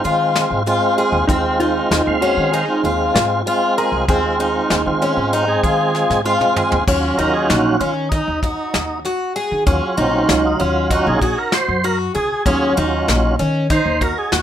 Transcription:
Already playing: tonewheel organ G#3 C4 F4, hollow-body jazz guitar G#4
0.04 upright bass D#3, twelve-string acoustic guitar F4, closed hi-hat
0.35 snare, closed hi-hat
0.51 upright bass G#2
0.66 tonewheel organ G#3 C4 F4, twelve-string acoustic guitar F4, closed hi-hat
0.98 twelve-string acoustic guitar G#4, closed hi-hat
1.12 upright bass D#2
1.28 upright bass D#2, tonewheel organ G#3 C4 F4, twelve-string acoustic guitar C4, hollow-body jazz guitar D#4, kick, closed hi-hat
1.60 twelve-string acoustic guitar D#4, hollow-body jazz guitar F4, closed hi-hat
1.91 upright bass D#2, snare, closed hi-hat
2.05 upright bass D#2, tonewheel organ G#3 C4 F5
2.21 twelve-string acoustic guitar C#4, hollow-body jazz guitar F#4, closed hi-hat
2.37 upright bass D#3
2.52 twelve-string acoustic guitar D#4, hollow-body jazz guitar G#4, closed hi-hat
2.68 tonewheel organ G#3 C4 F4
2.84 upright bass D#2, twelve-string acoustic guitar F4, closed hi-hat
3.14 upright bass G#2, hollow-body jazz guitar F4, snare, closed hi-hat
3.46 tonewheel organ G#3 C4 F4, twelve-string acoustic guitar F4, closed hi-hat
3.78 twelve-string acoustic guitar G#4, hollow-body jazz guitar A#4, closed hi-hat
3.92 upright bass C2
4.08 upright bass D#2, tonewheel organ G#3 C4 F4, twelve-string acoustic guitar C4, hollow-body jazz guitar G#4, kick, closed hi-hat
4.40 twelve-string acoustic guitar D#4, closed hi-hat
4.70 upright bass D#2, snare, closed hi-hat
4.86 upright bass D#3, tonewheel organ G#3 C4 F4
5.01 twelve-string acoustic guitar C#4, snare, closed hi-hat
5.17 upright bass G#2
5.33 twelve-string acoustic guitar D#4, closed hi-hat
5.47 tonewheel organ G#3 C4 G#4
5.63 upright bass D#3, twelve-string acoustic guitar F4, kick, closed hi-hat
5.95 snare
6.10 upright bass G#2, snare
6.25 tonewheel organ G#3 C4 F4, twelve-string acoustic guitar F4
6.41 mid tom
6.56 twelve-string acoustic guitar G#4, mid tom
6.72 upright bass D#2, floor tom
6.87 upright bass D#2, tonewheel organ F#3 C#4 F4, twelve-string acoustic guitar C#4, kick, crash
7.18 upright bass D#2, twelve-string acoustic guitar D#4, tonewheel organ A#4, closed hi-hat
7.34 tonewheel organ G#4
7.49 upright bass A#1, tonewheel organ F#4, snare, closed hi-hat
7.80 upright bass D#3, twelve-string acoustic guitar C#4, tonewheel organ F4, closed hi-hat
8.09 tonewheel organ D#4, twelve-string acoustic guitar D#4, kick, snare, closed hi-hat
8.28 upright bass D#2
8.43 twelve-string acoustic guitar F#4, kick, closed hi-hat
8.74 upright bass D#2, snare, closed hi-hat
9.05 twelve-string acoustic guitar F#4, snare, closed hi-hat
9.36 twelve-string acoustic guitar G#4, closed hi-hat
9.51 upright bass D#3
9.66 upright bass D#2, tonewheel organ F#3 C#4 F4, twelve-string acoustic guitar C#4, kick, closed hi-hat
9.97 upright bass A#1, tonewheel organ C4, twelve-string acoustic guitar D#4, closed hi-hat
10.29 upright bass C#2, tonewheel organ C#4, snare, closed hi-hat
10.46 tonewheel organ D#4
10.60 upright bass D#2, twelve-string acoustic guitar C#4, tonewheel organ F4, closed hi-hat
10.90 tonewheel organ F#3 C#4 F4 F#4, twelve-string acoustic guitar D#4, kick, closed hi-hat
11.07 upright bass A#1, tonewheel organ G#4
11.21 twelve-string acoustic guitar F#4, kick, closed hi-hat
11.38 tonewheel organ A#4
11.52 tonewheel organ C5, snare, closed hi-hat
11.68 upright bass F#2
11.83 twelve-string acoustic guitar F#4, tonewheel organ A#4, closed hi-hat
12.15 upright bass C#2, twelve-string acoustic guitar G#4, tonewheel organ G#4, closed hi-hat
12.45 upright bass D#2, tonewheel organ F#3 C#4 F4, twelve-string acoustic guitar C#4, kick, closed hi-hat
12.77 upright bass D#2, twelve-string acoustic guitar D#4, closed hi-hat
13.08 upright bass A#1, snare, closed hi-hat
13.39 upright bass D#3, twelve-string acoustic guitar C#4, closed hi-hat
13.70 twelve-string acoustic guitar D#4, tonewheel organ C5, kick, snare, closed hi-hat
13.86 upright bass D#2
14.01 twelve-string acoustic guitar F#4, tonewheel organ A#4, kick, closed hi-hat
14.18 tonewheel organ G#4
14.32 upright bass D#2, tonewheel organ F#4, snare, closed hi-hat

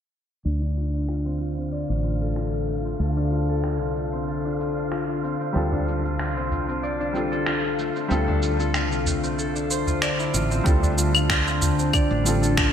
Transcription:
0.45 fretless electric bass D2, ambient pad D3, harp D4, synth texture F5, cabasa
0.58 ambient pad D4 F4
0.62 harp D4
0.77 harp F4, cabasa
0.93 harp F4, cabasa
1.09 harp F4, finger snap
1.25 harp C4
1.41 harp F4, cabasa
1.57 harp C4, cabasa
1.72 harp D5, cabasa
1.89 fretless electric bass A1, harp D4, cabasa
2.04 harp F4, cabasa
2.09 ambient pad A5
2.21 harp A4, cabasa
2.36 harp F4, finger snap
2.53 harp F4
2.68 harp A3, cabasa
2.85 harp C4, cabasa
2.99 fretless electric bass D2, harp A4, cabasa
3.17 harp D4
3.32 harp F4, cabasa
3.49 harp A4, cabasa
3.64 harp F4, finger snap, cabasa
3.80 fretless electric bass C2, harp F4, cabasa
3.96 harp A3, cabasa
4.13 harp C4, cabasa
4.28 harp A4, cabasa
4.45 harp D4, cabasa
4.60 harp F4, cabasa
4.77 harp D4, cabasa
4.92 harp F4, finger snap, cabasa
5.09 harp F4
5.23 harp C4, cabasa
5.40 harp C4, cabasa
5.53 fretless electric bass D2, felt piano G3 C4 F4 A4, harp D4, cabasa
5.72 harp D4, udu
5.87 harp F4, cabasa
6.04 harp F4, cabasa
6.19 harp F4, finger snap, cabasa
6.36 fretless electric bass C2, harp C4, cabasa
6.51 harp F4, udu, cabasa
6.68 harp C4, cabasa
6.83 harp D5, cabasa
7.00 harp D4, cabasa
7.13 felt piano G3 C4 F4, harp F4, cabasa
7.17 felt piano A4
7.32 harp A4, cabasa
7.46 harp F4, finger snap, cabasa
7.63 harp F4
7.79 harp A3, cabasa
7.96 harp C4, cabasa
8.08 fretless electric bass D2, felt piano G3 C4 F4 A4, harp A4, cabasa
8.28 harp D4, udu
8.43 harp F4, cabasa
8.60 harp A4, cabasa
8.74 harp F4, finger snap, cabasa
8.91 fretless electric bass C2, harp F4, cabasa
9.06 harp A3, udu, cabasa
9.23 harp C4, cabasa
9.39 harp A4, cabasa
9.56 harp D4, cabasa
9.70 harp C5, cabasa
9.87 harp F4, udu, cabasa
10.02 harp D5, finger snap, cabasa
10.19 harp E4, cabasa
10.34 fretless electric bass A1, harp F4, cabasa
10.51 harp C4, cabasa
10.64 fretless electric bass D2, felt piano G3 C4 F4 A4, harp D4, kick, cabasa
10.83 harp D4, udu, cabasa
10.98 harp F4, cabasa
11.15 harp F4, cabasa, claves
11.30 harp F4, finger snap, kick, cabasa
11.47 harp C4, cabasa
11.62 harp F4, udu, cabasa
11.79 harp C4, cabasa
11.93 harp D5, kick, cabasa, claves
12.11 fretless electric bass A1, harp D4
12.24 felt piano G3 C4 F4, harp F4, cabasa
12.28 felt piano A4
12.43 harp A4, cabasa
12.57 harp F4, finger snap, kick, cabasa

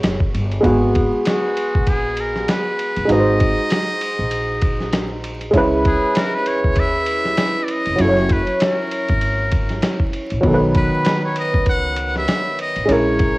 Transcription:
Already playing: upright piano G#3 B3 F#4 C#5
0.03 upright bass F#1, snare, hi-hat pedal, ride
0.20 kick
0.35 upright bass G1, ride
0.52 ride
0.61 upright bass G#1, upright piano G#3 B3, kick, ride
0.65 upright piano F#4 G#4
0.95 kick, ride
1.25 muted trumpet F#4, snare, hi-hat pedal, ride
1.57 ride
1.75 upright bass A#1, kick
1.87 muted trumpet G#4, kick, ride
2.17 muted trumpet A#4, ride
2.36 snare
2.48 muted trumpet B4, snare, hi-hat pedal, ride
2.79 ride
2.96 upright bass G1, ride
3.05 upright piano G#3 D#4, ride
3.10 upright bass G#1, upright piano F#4 B4, muted trumpet D#5
3.18 upright piano C5
3.40 kick, ride
3.70 snare, hi-hat pedal, ride
4.01 ride
4.19 upright bass A#1
4.31 ride
4.62 kick, ride
4.81 snare
4.93 snare, hi-hat pedal, ride
5.24 ride
5.41 ride
5.51 upright bass C#2, upright piano G#3 C#4, kick, ride
5.55 upright piano E4 B4
5.85 muted trumpet G#4, kick, ride
6.15 muted trumpet A#4, snare, hi-hat pedal, ride
6.35 muted trumpet B4
6.46 muted trumpet C#5, ride
6.64 upright bass D#2, kick
6.76 muted trumpet E5, kick, ride
7.06 ride
7.25 snare
7.37 snare, hi-hat pedal, ride
7.64 muted trumpet D5
7.68 muted trumpet D#5, ride
7.86 upright bass F1, ride
7.96 upright piano F#3 C#4, ride
8.00 upright bass F#1, upright piano E4 A4, muted trumpet C#5
8.08 upright piano C#5
8.17 snare
8.29 muted trumpet B4, kick, snare, ride
8.47 ride
8.60 muted trumpet A#4, snare, hi-hat pedal, ride
8.91 ride
9.08 upright bass G#1, kick, ride
9.21 ride
9.51 kick, ride
9.69 snare, ride
9.82 snare, hi-hat pedal, ride
10.00 kick
10.13 ride
10.30 upright bass A#1, ride
10.41 upright bass B1, upright piano F#3 B3, kick, ride
10.45 upright piano D#3 A4
10.54 upright piano B4
10.75 muted trumpet B4, kick, ride
11.05 snare, hi-hat pedal, ride
11.25 muted trumpet C#5
11.36 muted trumpet D#5, ride
11.54 upright bass C#2, kick
11.66 muted trumpet F#5, kick, ride
11.96 ride
12.16 muted trumpet E5, snare
12.28 snare, hi-hat pedal, ride
12.59 muted trumpet D#5, ride
12.76 upright bass A1, ride
12.86 upright bass A#1, upright piano G#3 C#4, ride
12.90 upright piano E4 A#4, muted trumpet C#5
13.20 kick, ride

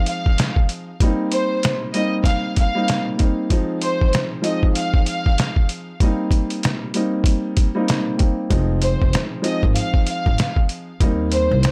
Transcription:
Already playing: upright piano F3 G#3 C4 D#4
0.06 violin section F5, closed hi-hat
0.26 kick
0.38 snare, closed hi-hat
0.56 kick
0.69 closed hi-hat
1.00 upright piano G3 A#3 C4 D#4, kick, closed hi-hat
1.32 violin section C5, closed hi-hat
1.63 snare, closed hi-hat
1.94 upright piano G3 A#3 C4 D#4, violin section D#5, closed hi-hat
2.24 violin section F5, kick, snare, closed hi-hat
2.56 violin section F5, kick, closed hi-hat
2.75 upright piano G3 A#3 C4 D#4
2.88 snare, closed hi-hat
3.17 upright piano G3 A#3 C4 D#4, kick, closed hi-hat
3.50 upright piano F3 G#3 C4 D#4, kick, closed hi-hat
3.82 violin section C5, closed hi-hat
4.01 kick
4.13 snare, closed hi-hat
4.42 upright piano F3 G#3 C4 D#4, violin section D#5, closed hi-hat
4.63 kick
4.75 violin section F5, closed hi-hat
4.94 kick
5.06 violin section F5, closed hi-hat
5.26 kick
5.38 snare, closed hi-hat
5.56 kick
5.69 closed hi-hat
6.00 upright piano G3 A#3 C4 D#4, kick, closed hi-hat
6.31 kick, closed hi-hat
6.50 closed hi-hat
6.63 snare, closed hi-hat
6.94 upright piano G3 A#3 C4 D#4, closed hi-hat
7.24 kick, closed hi-hat
7.57 kick, closed hi-hat
7.75 upright piano G3 A#3 C4 D#4
7.88 snare, closed hi-hat
8.17 upright piano G3 A#3 C4 D#4, kick, closed hi-hat
8.50 upright bass F1, upright piano F3 G#3 C4 D#4, kick, closed hi-hat
8.81 violin section C5, closed hi-hat
9.02 upright bass F1, kick
9.13 snare, closed hi-hat
9.42 upright piano F3 G#3 C4 D#4, violin section D#5, closed hi-hat
9.63 upright bass G#1, kick
9.75 violin section F5, closed hi-hat
9.94 kick
10.07 violin section F5, closed hi-hat
10.26 upright bass G#1, kick
10.38 snare, closed hi-hat
10.56 kick
10.69 closed hi-hat
11.00 upright bass D#2, upright piano G3 A#3 C4 D#4, kick, closed hi-hat
11.32 violin section C5, closed hi-hat
11.51 upright bass C2
11.63 snare, closed hi-hat

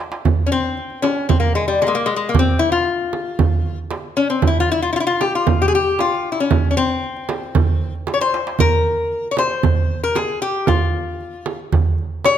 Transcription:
0.12 darbuka ka
0.25 darbuka dum, frame drum
0.46 resonator guitar played with a steel bar C#4
0.52 resonator guitar played with a steel bar C4
0.77 darbuka ka
0.90 darbuka ka
1.02 resonator guitar played with a steel bar C#4, darbuka tek, frame drum
1.29 resonator guitar played with a steel bar C4, frame drum, darbuka dum
1.40 resonator guitar played with a steel bar A#3, darbuka ka
1.55 resonator guitar played with a steel bar G#3, darbuka ka
1.68 resonator guitar played with a steel bar G3
1.82 resonator guitar played with a steel bar G#3, darbuka tek, frame drum
1.87 resonator guitar played with a steel bar G#3 A#3
1.95 resonator guitar played with a steel bar A#3
2.06 resonator guitar played with a steel bar G#3
2.16 resonator guitar played with a steel bar G#3
2.29 resonator guitar played with a steel bar A#3
2.34 darbuka dum, frame drum
2.39 resonator guitar played with a steel bar C4
2.59 resonator guitar played with a steel bar E4
2.72 resonator guitar played with a steel bar F4
2.87 darbuka ka
3.13 frame drum
3.39 frame drum, darbuka dum
3.52 darbuka ka
3.65 darbuka ka
3.91 darbuka tek, frame drum
4.17 resonator guitar played with a steel bar C#4
4.30 resonator guitar played with a steel bar C4
4.42 frame drum, darbuka dum
4.47 resonator guitar played with a steel bar E4
4.60 resonator guitar played with a steel bar F4
4.72 resonator guitar played with a steel bar E4
4.82 resonator guitar played with a steel bar F4
4.93 resonator guitar played with a steel bar E4 F4, darbuka ka
5.00 resonator guitar played with a steel bar E4
5.07 resonator guitar played with a steel bar F4
5.21 resonator guitar played with a steel bar G4, darbuka tek, frame drum
5.35 resonator guitar played with a steel bar F4
5.47 frame drum, darbuka dum
5.60 resonator guitar played with a steel bar G4, darbuka ka
5.68 resonator guitar played with a steel bar G#4
5.75 resonator guitar played with a steel bar G4
5.99 resonator guitar played with a steel bar F4, darbuka tek, frame drum
6.32 resonator guitar played with a steel bar E4
6.40 resonator guitar played with a steel bar C#4
6.51 frame drum, darbuka dum
6.65 darbuka ka
6.71 resonator guitar played with a steel bar C#4
6.77 resonator guitar played with a steel bar C4
7.04 darbuka ka
7.17 darbuka ka
7.29 darbuka tek, frame drum
7.43 darbuka ka
7.55 frame drum, darbuka dum
7.69 darbuka ka
7.82 darbuka ka
7.95 darbuka ka
8.07 darbuka tek, frame drum
8.14 resonator guitar played with a steel bar C#5
8.21 resonator guitar played with a steel bar C5, darbuka ka
8.34 darbuka tek
8.47 darbuka ka
8.59 resonator guitar played with a steel bar A#4, frame drum, darbuka dum
9.12 darbuka ka
9.25 darbuka ka
9.31 resonator guitar played with a steel bar C#5
9.37 resonator guitar played with a steel bar C5, darbuka tek, frame drum
9.63 frame drum, darbuka dum
9.78 darbuka ka
10.04 resonator guitar played with a steel bar A#4
10.15 resonator guitar played with a steel bar G#4, darbuka tek, frame drum
10.42 resonator guitar played with a steel bar G4
10.67 resonator guitar played with a steel bar F4, frame drum, darbuka dum
11.21 darbuka ka
11.34 darbuka ka
11.46 frame drum
11.72 darbuka dum, frame drum
11.85 darbuka ka
11.98 darbuka ka
12.24 resonator guitar played with a steel bar C#5, darbuka tek, frame drum

